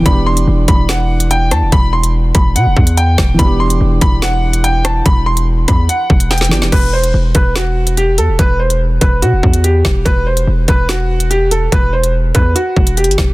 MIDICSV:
0, 0, Header, 1, 5, 480
1, 0, Start_track
1, 0, Key_signature, 1, "minor"
1, 0, Tempo, 416667
1, 65, Time_signature, 4, 2, 24, 8
1, 15363, End_track
2, 0, Start_track
2, 0, Title_t, "Upright piano"
2, 0, Program_c, 0, 0
2, 65, Note_on_c, 0, 83, 98
2, 284, Note_off_c, 0, 83, 0
2, 305, Note_on_c, 0, 84, 86
2, 524, Note_off_c, 0, 84, 0
2, 783, Note_on_c, 0, 83, 83
2, 1004, Note_off_c, 0, 83, 0
2, 1024, Note_on_c, 0, 78, 84
2, 1476, Note_off_c, 0, 78, 0
2, 1507, Note_on_c, 0, 79, 86
2, 1725, Note_off_c, 0, 79, 0
2, 1745, Note_on_c, 0, 81, 83
2, 1964, Note_off_c, 0, 81, 0
2, 1988, Note_on_c, 0, 83, 102
2, 2206, Note_off_c, 0, 83, 0
2, 2222, Note_on_c, 0, 84, 83
2, 2443, Note_off_c, 0, 84, 0
2, 2703, Note_on_c, 0, 83, 80
2, 2923, Note_off_c, 0, 83, 0
2, 2945, Note_on_c, 0, 78, 88
2, 3396, Note_off_c, 0, 78, 0
2, 3427, Note_on_c, 0, 79, 81
2, 3877, Note_off_c, 0, 79, 0
2, 3903, Note_on_c, 0, 83, 90
2, 4123, Note_off_c, 0, 83, 0
2, 4147, Note_on_c, 0, 84, 81
2, 4365, Note_off_c, 0, 84, 0
2, 4627, Note_on_c, 0, 83, 92
2, 4845, Note_off_c, 0, 83, 0
2, 4868, Note_on_c, 0, 78, 101
2, 5318, Note_off_c, 0, 78, 0
2, 5344, Note_on_c, 0, 79, 86
2, 5564, Note_off_c, 0, 79, 0
2, 5582, Note_on_c, 0, 81, 78
2, 5803, Note_off_c, 0, 81, 0
2, 5824, Note_on_c, 0, 83, 99
2, 6044, Note_off_c, 0, 83, 0
2, 6062, Note_on_c, 0, 84, 87
2, 6283, Note_off_c, 0, 84, 0
2, 6543, Note_on_c, 0, 83, 80
2, 6763, Note_off_c, 0, 83, 0
2, 6786, Note_on_c, 0, 78, 91
2, 7237, Note_off_c, 0, 78, 0
2, 7266, Note_on_c, 0, 79, 77
2, 7717, Note_off_c, 0, 79, 0
2, 7743, Note_on_c, 0, 71, 95
2, 7963, Note_off_c, 0, 71, 0
2, 7985, Note_on_c, 0, 72, 85
2, 8204, Note_off_c, 0, 72, 0
2, 8464, Note_on_c, 0, 71, 78
2, 8684, Note_off_c, 0, 71, 0
2, 8705, Note_on_c, 0, 66, 83
2, 9156, Note_off_c, 0, 66, 0
2, 9186, Note_on_c, 0, 67, 84
2, 9405, Note_off_c, 0, 67, 0
2, 9424, Note_on_c, 0, 69, 78
2, 9644, Note_off_c, 0, 69, 0
2, 9667, Note_on_c, 0, 71, 102
2, 9886, Note_off_c, 0, 71, 0
2, 9901, Note_on_c, 0, 72, 79
2, 10122, Note_off_c, 0, 72, 0
2, 10381, Note_on_c, 0, 71, 79
2, 10602, Note_off_c, 0, 71, 0
2, 10625, Note_on_c, 0, 66, 89
2, 11076, Note_off_c, 0, 66, 0
2, 11105, Note_on_c, 0, 67, 76
2, 11556, Note_off_c, 0, 67, 0
2, 11582, Note_on_c, 0, 71, 93
2, 11803, Note_off_c, 0, 71, 0
2, 11825, Note_on_c, 0, 72, 76
2, 12044, Note_off_c, 0, 72, 0
2, 12306, Note_on_c, 0, 71, 91
2, 12525, Note_off_c, 0, 71, 0
2, 12547, Note_on_c, 0, 66, 91
2, 12997, Note_off_c, 0, 66, 0
2, 13024, Note_on_c, 0, 67, 86
2, 13244, Note_off_c, 0, 67, 0
2, 13262, Note_on_c, 0, 69, 78
2, 13483, Note_off_c, 0, 69, 0
2, 13504, Note_on_c, 0, 71, 97
2, 13724, Note_off_c, 0, 71, 0
2, 13743, Note_on_c, 0, 72, 81
2, 13963, Note_off_c, 0, 72, 0
2, 14222, Note_on_c, 0, 71, 83
2, 14443, Note_off_c, 0, 71, 0
2, 14463, Note_on_c, 0, 66, 87
2, 14915, Note_off_c, 0, 66, 0
2, 14946, Note_on_c, 0, 67, 73
2, 15363, Note_off_c, 0, 67, 0
2, 15363, End_track
3, 0, Start_track
3, 0, Title_t, "Grand piano"
3, 0, Program_c, 1, 0
3, 0, Note_on_c, 1, 52, 70
3, 39, Note_on_c, 1, 59, 61
3, 80, Note_on_c, 1, 62, 65
3, 120, Note_on_c, 1, 67, 71
3, 283, Control_c, 1, 64, 127
3, 3826, Note_off_c, 1, 52, 0
3, 3846, Note_off_c, 1, 59, 0
3, 3850, Note_on_c, 1, 52, 71
3, 3866, Note_off_c, 1, 62, 0
3, 3886, Note_off_c, 1, 67, 0
3, 3891, Note_on_c, 1, 59, 68
3, 3918, Control_c, 1, 64, 0
3, 3931, Note_on_c, 1, 62, 60
3, 3972, Note_on_c, 1, 67, 74
3, 4139, Control_c, 1, 64, 127
3, 7431, Note_off_c, 1, 52, 0
3, 7452, Note_off_c, 1, 59, 0
3, 7472, Note_off_c, 1, 62, 0
3, 7474, Note_on_c, 1, 52, 56
3, 7492, Note_off_c, 1, 67, 0
3, 7494, Note_on_c, 1, 59, 46
3, 7514, Note_on_c, 1, 62, 49
3, 7535, Note_on_c, 1, 67, 55
3, 7730, Note_off_c, 1, 52, 0
3, 7739, Note_off_c, 1, 59, 0
3, 7750, Note_off_c, 1, 62, 0
3, 7757, Control_c, 1, 64, 0
3, 7760, Note_off_c, 1, 67, 0
3, 7986, Control_c, 1, 64, 127
3, 11601, Control_c, 1, 64, 0
3, 15363, End_track
4, 0, Start_track
4, 0, Title_t, "808-style bass"
4, 0, Program_c, 2, 38
4, 65, Note_on_c, 2, 28, 119
4, 526, Note_off_c, 2, 28, 0
4, 546, Note_on_c, 2, 28, 103
4, 776, Note_off_c, 2, 28, 0
4, 785, Note_on_c, 2, 28, 109
4, 1745, Note_on_c, 2, 40, 101
4, 1762, Note_off_c, 2, 28, 0
4, 1865, Note_on_c, 2, 28, 104
4, 1883, Note_off_c, 2, 40, 0
4, 1979, Note_off_c, 2, 28, 0
4, 1985, Note_on_c, 2, 28, 117
4, 2676, Note_off_c, 2, 28, 0
4, 2705, Note_on_c, 2, 28, 105
4, 2945, Note_on_c, 2, 47, 100
4, 2962, Note_off_c, 2, 28, 0
4, 3066, Note_on_c, 2, 28, 104
4, 3083, Note_off_c, 2, 47, 0
4, 3179, Note_off_c, 2, 28, 0
4, 3186, Note_on_c, 2, 40, 104
4, 3646, Note_off_c, 2, 40, 0
4, 3666, Note_on_c, 2, 28, 107
4, 3896, Note_off_c, 2, 28, 0
4, 3905, Note_on_c, 2, 28, 115
4, 4366, Note_off_c, 2, 28, 0
4, 4384, Note_on_c, 2, 28, 104
4, 4615, Note_off_c, 2, 28, 0
4, 4625, Note_on_c, 2, 28, 104
4, 5779, Note_off_c, 2, 28, 0
4, 5825, Note_on_c, 2, 28, 116
4, 6516, Note_off_c, 2, 28, 0
4, 6545, Note_on_c, 2, 40, 105
4, 6776, Note_off_c, 2, 40, 0
4, 7026, Note_on_c, 2, 28, 109
4, 7504, Note_on_c, 2, 31, 102
4, 7522, Note_off_c, 2, 28, 0
4, 7624, Note_on_c, 2, 28, 101
4, 7642, Note_off_c, 2, 31, 0
4, 7739, Note_off_c, 2, 28, 0
4, 7745, Note_on_c, 2, 28, 111
4, 8206, Note_off_c, 2, 28, 0
4, 8224, Note_on_c, 2, 28, 106
4, 8455, Note_off_c, 2, 28, 0
4, 8465, Note_on_c, 2, 28, 105
4, 9425, Note_on_c, 2, 40, 101
4, 9442, Note_off_c, 2, 28, 0
4, 9544, Note_on_c, 2, 28, 102
4, 9562, Note_off_c, 2, 40, 0
4, 9659, Note_off_c, 2, 28, 0
4, 9665, Note_on_c, 2, 28, 118
4, 10356, Note_off_c, 2, 28, 0
4, 10385, Note_on_c, 2, 28, 102
4, 10624, Note_on_c, 2, 47, 102
4, 10642, Note_off_c, 2, 28, 0
4, 10744, Note_on_c, 2, 28, 99
4, 10762, Note_off_c, 2, 47, 0
4, 10859, Note_off_c, 2, 28, 0
4, 10866, Note_on_c, 2, 40, 108
4, 11326, Note_off_c, 2, 40, 0
4, 11345, Note_on_c, 2, 28, 106
4, 11575, Note_off_c, 2, 28, 0
4, 11585, Note_on_c, 2, 28, 117
4, 12046, Note_off_c, 2, 28, 0
4, 12065, Note_on_c, 2, 28, 105
4, 12295, Note_off_c, 2, 28, 0
4, 12305, Note_on_c, 2, 28, 103
4, 13459, Note_off_c, 2, 28, 0
4, 13504, Note_on_c, 2, 28, 114
4, 14196, Note_off_c, 2, 28, 0
4, 14225, Note_on_c, 2, 40, 102
4, 14455, Note_off_c, 2, 40, 0
4, 14705, Note_on_c, 2, 28, 104
4, 15065, Note_on_c, 2, 31, 96
4, 15082, Note_off_c, 2, 28, 0
4, 15179, Note_off_c, 2, 31, 0
4, 15184, Note_on_c, 2, 28, 103
4, 15363, Note_off_c, 2, 28, 0
4, 15363, End_track
5, 0, Start_track
5, 0, Title_t, "Drums"
5, 65, Note_on_c, 9, 36, 121
5, 65, Note_on_c, 9, 42, 80
5, 180, Note_off_c, 9, 36, 0
5, 180, Note_off_c, 9, 42, 0
5, 424, Note_on_c, 9, 42, 68
5, 539, Note_off_c, 9, 42, 0
5, 784, Note_on_c, 9, 42, 88
5, 785, Note_on_c, 9, 36, 105
5, 899, Note_off_c, 9, 42, 0
5, 900, Note_off_c, 9, 36, 0
5, 1024, Note_on_c, 9, 38, 122
5, 1026, Note_on_c, 9, 42, 74
5, 1139, Note_off_c, 9, 38, 0
5, 1142, Note_off_c, 9, 42, 0
5, 1383, Note_on_c, 9, 42, 79
5, 1499, Note_off_c, 9, 42, 0
5, 1506, Note_on_c, 9, 42, 73
5, 1621, Note_off_c, 9, 42, 0
5, 1744, Note_on_c, 9, 42, 93
5, 1745, Note_on_c, 9, 37, 93
5, 1859, Note_off_c, 9, 42, 0
5, 1860, Note_off_c, 9, 37, 0
5, 1984, Note_on_c, 9, 42, 77
5, 1985, Note_on_c, 9, 36, 114
5, 2100, Note_off_c, 9, 36, 0
5, 2100, Note_off_c, 9, 42, 0
5, 2344, Note_on_c, 9, 42, 68
5, 2459, Note_off_c, 9, 42, 0
5, 2703, Note_on_c, 9, 42, 87
5, 2705, Note_on_c, 9, 36, 106
5, 2818, Note_off_c, 9, 42, 0
5, 2820, Note_off_c, 9, 36, 0
5, 2946, Note_on_c, 9, 42, 75
5, 3061, Note_off_c, 9, 42, 0
5, 3186, Note_on_c, 9, 36, 94
5, 3301, Note_off_c, 9, 36, 0
5, 3304, Note_on_c, 9, 42, 78
5, 3419, Note_off_c, 9, 42, 0
5, 3426, Note_on_c, 9, 42, 73
5, 3541, Note_off_c, 9, 42, 0
5, 3665, Note_on_c, 9, 36, 92
5, 3665, Note_on_c, 9, 37, 95
5, 3665, Note_on_c, 9, 38, 115
5, 3780, Note_off_c, 9, 37, 0
5, 3780, Note_off_c, 9, 38, 0
5, 3781, Note_off_c, 9, 36, 0
5, 3905, Note_on_c, 9, 36, 115
5, 3905, Note_on_c, 9, 42, 82
5, 4020, Note_off_c, 9, 36, 0
5, 4020, Note_off_c, 9, 42, 0
5, 4265, Note_on_c, 9, 42, 69
5, 4380, Note_off_c, 9, 42, 0
5, 4624, Note_on_c, 9, 42, 90
5, 4625, Note_on_c, 9, 36, 110
5, 4739, Note_off_c, 9, 42, 0
5, 4740, Note_off_c, 9, 36, 0
5, 4864, Note_on_c, 9, 38, 118
5, 4867, Note_on_c, 9, 42, 73
5, 4980, Note_off_c, 9, 38, 0
5, 4982, Note_off_c, 9, 42, 0
5, 5223, Note_on_c, 9, 42, 75
5, 5339, Note_off_c, 9, 42, 0
5, 5346, Note_on_c, 9, 42, 73
5, 5461, Note_off_c, 9, 42, 0
5, 5584, Note_on_c, 9, 42, 90
5, 5585, Note_on_c, 9, 37, 98
5, 5699, Note_off_c, 9, 42, 0
5, 5700, Note_off_c, 9, 37, 0
5, 5825, Note_on_c, 9, 36, 119
5, 5825, Note_on_c, 9, 42, 76
5, 5940, Note_off_c, 9, 36, 0
5, 5940, Note_off_c, 9, 42, 0
5, 6184, Note_on_c, 9, 42, 70
5, 6300, Note_off_c, 9, 42, 0
5, 6543, Note_on_c, 9, 42, 91
5, 6545, Note_on_c, 9, 36, 105
5, 6546, Note_on_c, 9, 37, 95
5, 6659, Note_off_c, 9, 42, 0
5, 6661, Note_off_c, 9, 36, 0
5, 6661, Note_off_c, 9, 37, 0
5, 6787, Note_on_c, 9, 42, 74
5, 6902, Note_off_c, 9, 42, 0
5, 7026, Note_on_c, 9, 36, 97
5, 7141, Note_off_c, 9, 36, 0
5, 7144, Note_on_c, 9, 42, 75
5, 7259, Note_off_c, 9, 42, 0
5, 7265, Note_on_c, 9, 38, 65
5, 7265, Note_on_c, 9, 42, 64
5, 7345, Note_off_c, 9, 42, 0
5, 7345, Note_on_c, 9, 42, 62
5, 7381, Note_off_c, 9, 38, 0
5, 7385, Note_on_c, 9, 38, 69
5, 7425, Note_off_c, 9, 42, 0
5, 7425, Note_on_c, 9, 42, 63
5, 7500, Note_off_c, 9, 38, 0
5, 7505, Note_on_c, 9, 38, 98
5, 7540, Note_off_c, 9, 42, 0
5, 7620, Note_off_c, 9, 38, 0
5, 7625, Note_on_c, 9, 38, 98
5, 7740, Note_off_c, 9, 38, 0
5, 7745, Note_on_c, 9, 36, 114
5, 7745, Note_on_c, 9, 42, 76
5, 7745, Note_on_c, 9, 49, 88
5, 7860, Note_off_c, 9, 36, 0
5, 7860, Note_off_c, 9, 42, 0
5, 7860, Note_off_c, 9, 49, 0
5, 8104, Note_on_c, 9, 42, 66
5, 8220, Note_off_c, 9, 42, 0
5, 8463, Note_on_c, 9, 42, 88
5, 8465, Note_on_c, 9, 36, 105
5, 8578, Note_off_c, 9, 42, 0
5, 8580, Note_off_c, 9, 36, 0
5, 8704, Note_on_c, 9, 38, 113
5, 8706, Note_on_c, 9, 42, 70
5, 8819, Note_off_c, 9, 38, 0
5, 8822, Note_off_c, 9, 42, 0
5, 9063, Note_on_c, 9, 42, 75
5, 9179, Note_off_c, 9, 42, 0
5, 9185, Note_on_c, 9, 42, 71
5, 9301, Note_off_c, 9, 42, 0
5, 9423, Note_on_c, 9, 42, 87
5, 9539, Note_off_c, 9, 42, 0
5, 9664, Note_on_c, 9, 42, 77
5, 9665, Note_on_c, 9, 36, 117
5, 9779, Note_off_c, 9, 42, 0
5, 9780, Note_off_c, 9, 36, 0
5, 10024, Note_on_c, 9, 42, 64
5, 10139, Note_off_c, 9, 42, 0
5, 10383, Note_on_c, 9, 42, 85
5, 10385, Note_on_c, 9, 36, 103
5, 10498, Note_off_c, 9, 42, 0
5, 10500, Note_off_c, 9, 36, 0
5, 10626, Note_on_c, 9, 42, 71
5, 10741, Note_off_c, 9, 42, 0
5, 10866, Note_on_c, 9, 36, 88
5, 10981, Note_off_c, 9, 36, 0
5, 10984, Note_on_c, 9, 42, 72
5, 11099, Note_off_c, 9, 42, 0
5, 11106, Note_on_c, 9, 42, 68
5, 11221, Note_off_c, 9, 42, 0
5, 11345, Note_on_c, 9, 36, 91
5, 11345, Note_on_c, 9, 38, 112
5, 11460, Note_off_c, 9, 36, 0
5, 11460, Note_off_c, 9, 38, 0
5, 11585, Note_on_c, 9, 36, 112
5, 11585, Note_on_c, 9, 42, 76
5, 11700, Note_off_c, 9, 36, 0
5, 11700, Note_off_c, 9, 42, 0
5, 11944, Note_on_c, 9, 42, 66
5, 12060, Note_off_c, 9, 42, 0
5, 12303, Note_on_c, 9, 42, 85
5, 12305, Note_on_c, 9, 36, 102
5, 12419, Note_off_c, 9, 42, 0
5, 12420, Note_off_c, 9, 36, 0
5, 12544, Note_on_c, 9, 38, 112
5, 12546, Note_on_c, 9, 42, 72
5, 12659, Note_off_c, 9, 38, 0
5, 12662, Note_off_c, 9, 42, 0
5, 12904, Note_on_c, 9, 42, 74
5, 13019, Note_off_c, 9, 42, 0
5, 13026, Note_on_c, 9, 42, 70
5, 13141, Note_off_c, 9, 42, 0
5, 13264, Note_on_c, 9, 42, 87
5, 13379, Note_off_c, 9, 42, 0
5, 13504, Note_on_c, 9, 36, 111
5, 13504, Note_on_c, 9, 42, 75
5, 13620, Note_off_c, 9, 36, 0
5, 13620, Note_off_c, 9, 42, 0
5, 13864, Note_on_c, 9, 42, 65
5, 13979, Note_off_c, 9, 42, 0
5, 14223, Note_on_c, 9, 42, 87
5, 14225, Note_on_c, 9, 36, 99
5, 14338, Note_off_c, 9, 42, 0
5, 14340, Note_off_c, 9, 36, 0
5, 14466, Note_on_c, 9, 42, 73
5, 14581, Note_off_c, 9, 42, 0
5, 14705, Note_on_c, 9, 36, 90
5, 14820, Note_off_c, 9, 36, 0
5, 14823, Note_on_c, 9, 42, 74
5, 14938, Note_off_c, 9, 42, 0
5, 14944, Note_on_c, 9, 42, 60
5, 15024, Note_off_c, 9, 42, 0
5, 15024, Note_on_c, 9, 42, 61
5, 15104, Note_off_c, 9, 42, 0
5, 15104, Note_on_c, 9, 42, 59
5, 15184, Note_on_c, 9, 36, 86
5, 15184, Note_on_c, 9, 38, 110
5, 15219, Note_off_c, 9, 42, 0
5, 15299, Note_off_c, 9, 38, 0
5, 15300, Note_off_c, 9, 36, 0
5, 15363, End_track
0, 0, End_of_file